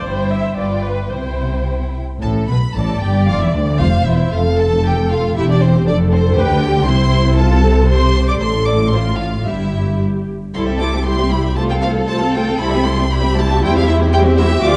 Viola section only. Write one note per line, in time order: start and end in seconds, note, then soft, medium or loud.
0.05 0.31 C5 medium
0.31 0.58 E5 medium
0.57 0.84 D5 medium
0.84 1.12 B4 medium
1.11 1.67 C5 medium
2.76 3.77 D5 loud
3.80 4.33 C5 medium
4.34 5.35 A4 loud
5.36 5.86 G4 medium
5.87 6.37 A4 loud
6.38 6.63 B4 loud
6.63 6.87 G4 medium
6.86 7.36 E4 medium
7.38 7.64 F4 medium
7.64 7.89 A4 medium
7.89 8.39 G4 medium
8.40 8.92 A4 medium
8.93 9.46 F4 medium
9.47 10.27 G4 medium
10.55 10.67 G3 medium
10.55 10.67 E4 medium
10.67 10.81 C4 medium
10.67 10.81 G4 medium
10.81 10.94 G3 medium
10.81 10.94 E4 medium
10.93 11.07 C4 medium
10.93 11.06 G4 medium
11.07 11.19 G3 medium
11.07 11.19 E4 medium
11.19 11.33 C4 medium
11.19 11.32 G4 medium
11.32 11.45 G3 medium
11.32 11.45 E4 medium
11.45 11.58 C4 medium
11.45 11.58 G4 medium
11.58 11.70 A3 medium
11.58 11.70 F4 medium
11.71 11.84 C4 medium
11.71 11.84 A4 medium
11.84 11.96 A3 medium
11.84 11.96 F4 medium
11.96 12.09 C4 medium
11.96 12.09 A4 medium
12.08 12.21 A3 medium
12.08 12.21 F4 medium
12.21 12.35 C4 medium
12.21 12.35 A4 medium
12.34 12.47 A3 medium
12.34 12.48 F4 medium
12.48 12.61 C4 medium
12.48 12.61 A4 medium
12.61 12.73 G3 medium
12.61 12.73 E4 medium
12.74 12.87 C4 medium
12.74 12.87 G4 medium
12.86 12.99 G3 medium
12.86 12.99 E4 medium
12.98 13.11 C4 medium
12.98 13.11 G4 medium
13.11 13.23 G3 medium
13.11 13.23 E4 medium
13.24 13.37 C4 medium
13.24 13.37 G4 medium
13.36 13.50 G3 medium
13.36 13.50 E4 medium
13.49 13.62 C4 medium
13.49 13.62 G4 medium
13.62 13.74 G3 medium
13.62 13.74 E4 medium
13.74 13.88 C4 medium
13.74 13.87 G4 medium
13.86 14.00 G3 medium
13.86 14.00 E4 medium
14.00 14.13 C4 medium
14.00 14.13 G4 medium
14.12 14.25 G3 medium
14.12 14.25 E4 medium
14.25 14.38 C4 medium
14.25 14.38 G4 medium
14.38 14.52 G3 medium
14.38 14.51 E4 medium
14.51 14.64 C4 medium
14.51 14.64 G4 medium
14.64 14.76 F3 loud
14.64 14.76 F4 loud